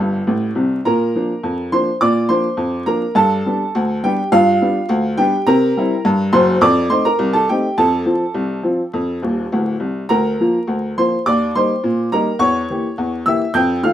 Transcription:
upright piano
Already playing: G1 G2 F5
0.27 A1 A2
0.55 C2 C3
0.85 A#2 A#4 A#5
1.15 F3 A#3 D4
1.43 F2
1.72 F3 A#3 D4 C5 C6
2.01 A#2 D5 D6
2.29 F3 A#3 D4 C5 C6
2.57 F2
2.86 F3 A#3 D4 A#4 A#5
3.15 G2 A4 A5
3.46 G3 B3 D4
3.75 D2
4.03 G3 B3 D4 G4 G5
4.32 G2 F4 F5
4.61 G3 B3 D4
4.89 D2
5.18 G3 B3 D4 G4 G5
5.47 C3 A#4 A#5
5.77 G3 C4 E4
6.05 G2
6.33 F#1 F#2 C5 C6
6.61 F2 D5 D6
6.90 A3 C4 D#4 C5 C6
7.05 A#4 A#5
7.19 C2
7.33 A4 A5
7.49 A3 C4 D#4 G4 G5
7.78 F2 A4 A5
8.06 F3 C4 F4
8.34 C2
8.63 F3 C4 F4
8.94 F2
9.23 D#1 D#2
9.52 D1 D2
9.80 C2
10.09 D2 A#4 A#5
10.40 F3 A#3 F4
10.68 D2
10.98 F3 A#3 F4 C5 C6
11.26 D#2 D5 D6
11.55 G3 A#3 D#4 C5 C6
11.84 A#2
12.12 G3 A#3 D#4 A#4 A#5
12.39 E2 C#5 C#6
12.70 E3 A#3 G4
12.98 E2
13.26 E3 A#3 G4 E5 E6
13.54 F2 G5 G6
13.83 D#3 A3 F4 F5 F6

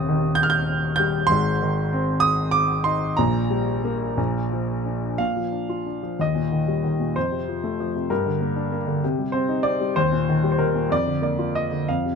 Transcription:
grand piano
Already playing: D#1 D#2 C3 D#6
0.09 D#3
0.35 G6
0.43 F6
0.50 G6
0.96 G3 G6
1.27 G#1 G#2 C6
1.62 D#3
1.93 C4
2.20 D#6
2.51 D6
2.84 D#4 C6
3.17 A#1 A#2 A#5
3.50 G3
3.84 A#3
4.17 A#1 A#2
4.52 F3
4.86 D4
5.18 A#2 F5
5.37 F3
5.52 D4
5.69 F4
5.86 D4
6.03 F3
6.19 D#2 D#5
6.35 A#2
6.52 D#3
6.68 G3
6.84 D#3
7.00 A#2
7.16 F2 C5
7.32 C3
7.49 F3
7.64 A3
7.80 F3
7.96 C3
8.10 G2 A#4
8.26 D3
8.41 A#3
8.56 D4
8.72 A#3
8.87 D3
9.04 C3
9.19 G3
9.32 C4 C5
9.49 D#4
9.63 C4 D5
9.81 G3
9.96 D#2 C5
10.12 A#2
10.29 D#3
10.43 G3
10.52 C5
10.58 D#3 A#4
10.74 A#2
10.90 F2 D5
11.06 D3
11.22 A#3 D5
11.39 F4
11.55 D#5
11.71 D3
11.88 F2 F5
12.05 C3

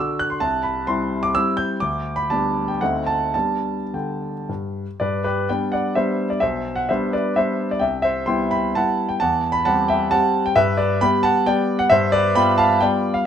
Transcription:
grand piano
Already playing: D3 D4 E6
0.00 F#4
0.19 F#6
0.30 C6
0.40 C2 A5
0.63 B5
0.87 G3 C4 E4 C6
1.23 D6
1.35 G3 C4 E4 E6
1.57 G6
1.80 D2 D6
2.16 B5
2.30 G3 B3 D4 A5
2.68 G5
2.81 D2 A3 C4 D#4 F#5
3.07 A5
3.34 G3 B3 D4 A5
3.94 D3 G5
4.49 G2
5.00 G2 B4 D5
5.24 G4 B4
5.49 G3 B3 D4 D5 G5
5.72 D5 F#5
5.95 G3 B3 D4 C5 E5
6.30 D5
6.40 B1 C5 E5
6.76 F#5
6.89 G3 B3 D4 C5 E5
7.13 B4 D5
7.36 G3 B3 D4 C5 E5
7.71 D5
7.79 C2 E5 G5
8.02 C5 E5
8.26 G3 B3 E4 G5 C6
8.51 G5 B5
8.75 G3 B3 E4 F#5 A5
9.09 G5
9.20 E2 F#5 A5
9.52 B5
9.65 G3 C4 G4 F#5 A5
9.88 E5 G5
10.10 G3 C4 G4 F#5 A5
10.46 G5
10.56 G2 B4 E5
10.77 B4 D5
11.01 G3 B3 G4 G5 B5
11.23 F#5 A5
11.46 G3 B3 G4 D5 G5
11.79 F#5
11.90 G2 C5 E5
12.12 B4 D5
12.35 G3 B3 F4 G5 B5
12.58 F5 A5
12.81 G3 B3 F4 D5 G5
13.14 F5

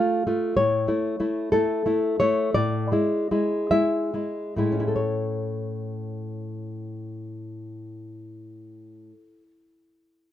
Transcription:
nylon-string guitar
Already playing: A3 F4 F5
0.27 A3 F4
0.57 A2 C#5
0.88 A3 E4
1.20 A3 E4
1.52 A3 E4 A4
1.86 A3 E4
2.20 A3 E4 C#5
2.54 A2 D5
2.92 G#3 E4
3.31 G#3 E4
3.71 G#3 E4 E5
4.14 G#3 E4
4.57 A2 G#3 E4
4.72 C#4
4.80 E4
4.88 A4
4.96 C#5

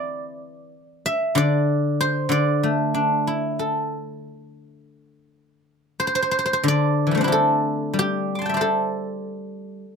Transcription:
guzheng
Already playing: E3 C4 E4 D5 E5 G5
1.06 E5
1.35 D3 D5
2.01 C5
2.29 D3 D5
2.63 A3
2.94 D4
3.27 E4
3.49 C#5
3.59 A4
3.77 C5
6.00 C5
6.07 C5
6.15 C5
6.22 C5
6.31 C5
6.39 C5
6.46 C5
6.53 C5
6.63 D3
6.68 D5
7.07 E3
7.11 G3 A3
7.17 C4 D4
7.24 E4 G4
7.32 A4
7.94 G3
7.99 G4
8.35 C6 D6
8.42 A5
8.46 E5 G5
8.54 C5 D5
8.61 A4

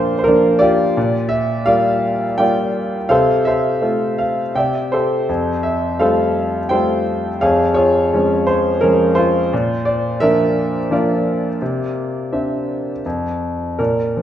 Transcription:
grand piano
Already playing: A#2 F3 A#3 D4 F4 A#4 C5 D5 F5
0.19 C5
0.24 F3 A#3 A#4
0.28 D4
0.59 F4 G4 D5
0.97 A#2
1.29 E5
1.66 G3 A#3 F4 D5 F5
2.38 G3 A#3 F4 D5 G5
3.09 C3 A4 C5 F5
3.45 A4 C5 E5
3.81 A3 C4 F4
4.18 F5
4.55 C3 D5 E5 G5
4.92 G4 A4 C5
5.29 F2
5.63 E5
5.99 G3 A3 F4 A4 C5 F5
6.69 G3 A3 F4 C5 G5
7.41 F2 G#4 C#5 F5
7.74 F4 G#4 C#5
8.13 F3 G#3 C#4
8.47 C5
8.81 F3 G#3 C#4 A#4
9.15 F4 C5
9.53 A#2
9.85 D5
10.20 F3 A#3 D4 A#4 E5
10.91 F3 A#3 D4 F4 A#4 D5
11.62 C3
12.32 C4 D4 E5
13.06 F2
13.79 A#2 A#4
14.17 F3

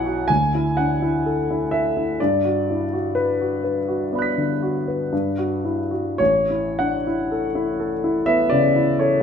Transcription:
grand piano
Already playing: B1 E4 F#4 F#5 G#5
0.06 F#4
0.28 D2 G#5
0.55 E4
0.77 D4 F#5
1.02 E4
1.26 A4
1.50 E4
1.71 A4 E5
1.97 E4
2.20 G2 D5
2.45 F#4
2.70 E4
2.93 F#4
3.15 B4
3.41 F#4
3.64 B4
3.88 F#4
4.12 B3 D5 B5
4.19 F#6 B6
4.38 D3
4.63 F#4
4.88 B4
5.12 G2
5.38 F#4
5.65 E4
5.91 F#4
6.18 A1 C#5
6.50 E4
6.79 D4 F#5
7.07 E4
7.32 A4
7.55 E4
7.80 A4
8.04 E4
8.26 B3 E5
8.49 C#3 D5
8.76 E4
8.99 A4 C#5

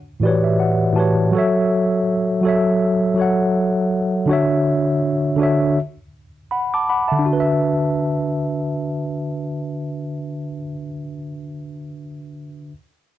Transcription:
tine electric piano
0.20 A2 E3 F#4 D5
0.24 G4 B4 C#5
0.44 E5
0.60 F#5
0.93 A2 E3 F#4 A5
0.97 G4 B4 C#5
1.31 F#3 F#4 A4
1.37 C#5 E5
2.41 F#3 F#4 A4
2.46 C#5 E5
3.14 F#3 F#4 A4
3.20 C#5 F#5
4.26 D3 D4 F#4
4.31 C#5 E5
5.36 D3 D4 F#4
5.41 C#5 E5
6.51 F#5 B5
6.74 A5 D6
6.89 F#5 B5
7.08 D3 E5 A5
7.19 D4
7.26 F#4
7.33 B4
7.40 E5

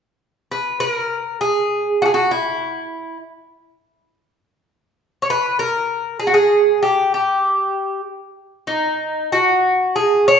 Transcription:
bouzouki
0.52 B4
0.80 A#4
1.41 G#4
2.02 F#4 G#4
2.14 F#4
2.31 E4
5.22 C#5
5.30 B4
5.59 A#4
6.20 G#4
6.27 F#4
6.34 G#4
6.83 G4
7.14 G4
8.67 D#4
9.32 F#4
9.96 G#4
10.28 C#5

